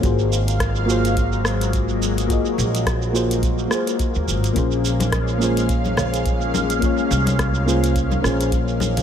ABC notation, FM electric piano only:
X:1
M:4/4
L:1/8
Q:"Swing 16ths" 1/4=106
K:Bbm
V:1 name="FM electric piano"
[B,FGAc]3 [B,FGAc]4- [B,FGAc] | [B,FGAe]3 [B,FGAc]2 [B,FGAc]3 | [B,DFAc]3 [B,DFAc]4- [B,DFAc] | [B,DFAd]3 [B,DFAc]2 [B,DFAc]3 |]